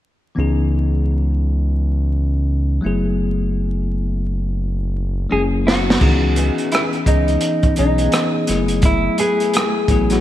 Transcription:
0.35 analog synth bass C#2, tine electric piano E3 B3 C#4 D#4
0.40 tine electric piano G#4
2.81 tine electric piano F#3 A3 B3 E4
2.85 analog synth bass F#1, tine electric piano G#4
5.30 analog synth bass F#1, tine electric piano F#3 G#3 C#4 E4 G#4, clean electric guitar G#4
5.37 tine electric piano A#3
5.67 clean electric guitar F#4, snare
5.90 snare
6.00 analog synth bass C#2, tine electric piano D#3 B3 C#4 D#4 G#4, kick, crash
6.06 tine electric piano E3
6.36 nylon-string guitar E3 B3 D#4 G#4, closed hi-hat
6.58 closed hi-hat
6.72 nylon-string guitar E3 B3 D#4 G#4, clean electric guitar E4, cross-stick, closed hi-hat
6.93 closed hi-hat
7.06 analog synth bass C#2, tine electric piano E3 B3 C#4 D#4 G#4, clean electric guitar D#4, kick, closed hi-hat
7.28 closed hi-hat
7.41 closed hi-hat
7.63 analog synth bass B1, kick, closed hi-hat
7.76 analog synth bass B1, tine electric piano E3 B3 C#4 D#4 G#4, clean electric guitar D#4, closed hi-hat
7.98 nylon-string guitar E3 B3 D#4 G#4, closed hi-hat
8.12 cross-stick, closed hi-hat
8.47 analog synth bass F#1, tine electric piano F#3 A3 B3 E4 G#4, cross-stick, closed hi-hat
8.68 closed hi-hat
8.82 clean electric guitar E4, kick, closed hi-hat
9.18 nylon-string guitar A3 E4 G#4 B4, clean electric guitar G#4, closed hi-hat
9.40 closed hi-hat
9.53 nylon-string guitar A3 E4 G#4 B4, cross-stick, closed hi-hat
9.88 analog synth bass A1, tine electric piano F#3 A3 B3 E4 G#4, kick, closed hi-hat
10.10 tine electric piano F#3 A3 B3 E4 F#4, cross-stick, closed hi-hat

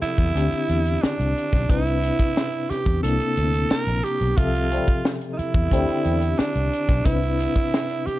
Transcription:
Already playing: reed electric piano C3 F3 C4 G4 A4 E5
0.02 tenor saxophone E4, muted fingered electric bass stroke, closed hi-hat
0.18 fingered electric bass E2, kick, closed hi-hat
0.35 fingered electric bass D2, reed electric piano D3 C4 D4 E4 G4, closed hi-hat
0.52 closed hi-hat
0.69 fingered electric bass E2, closed hi-hat
0.86 closed hi-hat
1.02 tenor saxophone D4, muted fingered electric bass stroke, snare
1.20 fingered electric bass C2, closed hi-hat
1.37 closed hi-hat
1.53 fingered electric bass B1, kick, snare, closed hi-hat
1.68 fingered electric bass C2, reed electric piano C3 C4 D4 E4 B4, tenor saxophone E4, kick, closed hi-hat
1.87 closed hi-hat
2.03 closed hi-hat
2.19 kick, closed hi-hat
2.37 snare
2.52 closed hi-hat
2.69 tenor saxophone G4, muted fingered electric bass stroke, snare, closed hi-hat
2.86 fingered electric bass E2, kick, closed hi-hat
3.02 fingered electric bass C2, reed electric piano C3 A#3 C4 D4 E4, tenor saxophone A4, closed hi-hat
3.20 muted fingered electric bass stroke, closed hi-hat
3.37 fingered electric bass D2, closed hi-hat
3.54 closed hi-hat
3.71 tenor saxophone A#4, muted fingered electric bass stroke, snare
3.87 fingered electric bass A#1, closed hi-hat
4.04 tenor saxophone G4, closed hi-hat
4.21 fingered electric bass B1, closed hi-hat
4.37 fingered electric bass C2, reed electric piano C3 F3 C4 G4 A4 E5, tenor saxophone F4, kick, closed hi-hat
4.55 closed hi-hat
4.71 trombone section G3 A3 C4, closed hi-hat
4.87 kick, closed hi-hat
5.05 snare
5.21 closed hi-hat
5.33 tenor saxophone D#4
5.38 tenor saxophone E4, muted fingered electric bass stroke, closed hi-hat
5.54 fingered electric bass E2, kick, closed hi-hat
5.71 fingered electric bass D2, reed electric piano D3 C4 D4 E4 G4, trombone section G3 A3 C4, kick, closed hi-hat
5.88 closed hi-hat
6.05 fingered electric bass E2, closed hi-hat
6.22 closed hi-hat
6.38 tenor saxophone D4, muted fingered electric bass stroke, snare
6.55 fingered electric bass C2, closed hi-hat
6.73 closed hi-hat
6.89 fingered electric bass B1, kick, snare, closed hi-hat
7.04 fingered electric bass C2, reed electric piano C3 C4 D4 E4 B4, tenor saxophone E4, kick, closed hi-hat
7.23 closed hi-hat
7.40 closed hi-hat
7.55 kick, closed hi-hat
7.74 snare
7.89 closed hi-hat
8.06 tenor saxophone G4, muted fingered electric bass stroke, closed hi-hat

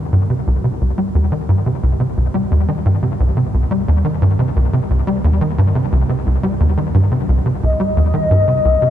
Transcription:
Already playing: analog synth bass D#3
0.13 analog synth bass G2
0.30 analog synth bass C3
0.47 analog synth bass C2
0.64 analog synth bass C3
0.81 analog synth bass C2
0.98 analog synth bass G3
1.15 analog synth bass D#2
1.32 analog synth bass D#3
1.49 analog synth bass G2
1.66 analog synth bass C3
1.83 analog synth bass C2
2.00 analog synth bass C3
2.17 analog synth bass C2
2.34 analog synth bass G3
2.51 analog synth bass D#2
2.68 analog synth bass D#3
2.85 analog synth bass G2
3.03 analog synth bass C3
3.20 analog synth bass C2
3.37 analog synth bass C3
3.54 analog synth bass C2
3.71 analog synth bass G3
3.88 analog synth bass D#2
4.05 analog synth bass D#3
4.22 analog synth bass G2
4.39 analog synth bass C3
4.56 analog synth bass C2
4.73 analog synth bass C3
4.90 analog synth bass C2
5.07 analog synth bass G3
5.24 analog synth bass D#2
5.41 analog synth bass D#3
5.58 analog synth bass G2
5.75 analog synth bass C3
5.92 analog synth bass C2
6.09 analog synth bass C3
6.26 analog synth bass C2
6.43 analog synth bass G3
6.60 analog synth bass D#2
6.77 analog synth bass D#3
6.94 analog synth bass G2
7.12 analog synth bass C3
7.29 analog synth bass C2
7.46 analog synth bass C3
7.63 analog synth bass C2, analog synth lead D#5
7.80 analog synth bass G3
7.97 analog synth bass D#2
8.14 analog synth bass D#3
8.31 analog synth bass G2
8.48 analog synth bass C3
8.65 analog synth bass C2
8.82 analog synth bass C3

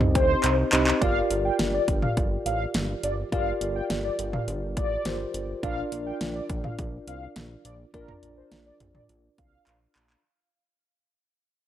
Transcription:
Already playing: analog synth bass C2, tine electric piano C4 D#4 G4 C5 D#5
0.01 mid tom
0.15 analog synth bass D2, analog polysynth C5, kick, closed hi-hat, cowbell
0.44 analog synth bass C2, clap, closed hi-hat
0.73 analog synth bass C2, tine electric piano C4 D#4 G4 C5 D#5, clap, closed hi-hat
0.87 clap
1.01 analog synth bass G1, tine electric piano F4 G4 A#4 D5, analog polysynth F5, kick, closed hi-hat
1.31 analog synth bass G1, closed hi-hat
1.45 analog polysynth G5
1.59 analog synth bass G1, snare, closed hi-hat
1.74 analog polysynth D5
1.88 analog synth bass G1, kick, closed hi-hat
2.02 analog polysynth F5, mid tom
2.17 analog synth bass G1, kick, closed hi-hat
2.46 analog synth bass A1, analog polysynth F5, closed hi-hat
2.74 analog synth bass G1, snare, closed hi-hat
3.03 analog synth bass G1, analog polysynth D5, closed hi-hat
3.32 analog synth bass G1, tine electric piano F4 G4 A#4 D5, analog polysynth F5, kick, closed hi-hat
3.61 analog synth bass G1, closed hi-hat
3.76 analog polysynth G5
3.90 analog synth bass G1, snare, closed hi-hat
4.04 analog polysynth D5
4.19 analog synth bass G1, closed hi-hat
4.33 analog polysynth F5, mid tom
4.48 analog synth bass G1, closed hi-hat
4.77 analog synth bass A1, analog polysynth D5, kick, closed hi-hat
5.05 analog synth bass G1, tine electric piano F4 G4 A#4 C5, snare, closed hi-hat
5.34 analog synth bass G1, closed hi-hat
5.63 analog synth bass A#1, tine electric piano D4 F4 A#4 D5, analog polysynth F5, kick, closed hi-hat
5.92 analog synth bass A#1, closed hi-hat
6.06 analog polysynth G5
6.21 analog synth bass A#1, snare, closed hi-hat
6.35 analog polysynth D5
6.50 analog synth bass A#1, kick, closed hi-hat
6.64 analog polysynth F5, mid tom
6.79 analog synth bass A#1, kick, closed hi-hat
7.07 analog synth bass C2, analog polysynth F5, closed hi-hat
7.36 analog synth bass A#1, snare, closed hi-hat
7.65 analog synth bass A#1, analog polysynth D5, closed hi-hat
7.94 analog synth bass A#1, tine electric piano D4 F4 A#4 D5, analog polysynth A#4, kick, closed hi-hat
8.08 mid tom
8.23 analog synth bass A#1, closed hi-hat
8.37 analog polysynth C5
8.52 analog synth bass A#1, snare, closed hi-hat
8.66 analog polysynth D5
8.80 analog synth bass A#1, closed hi-hat, mid tom
8.95 analog polysynth D5, mid tom
9.09 analog synth bass A#1, closed hi-hat
9.38 analog synth bass C2, analog polysynth F5, kick, closed hi-hat
9.67 analog synth bass A#1, clap, closed hi-hat
9.96 analog synth bass A#1, clap, closed hi-hat
10.10 clap

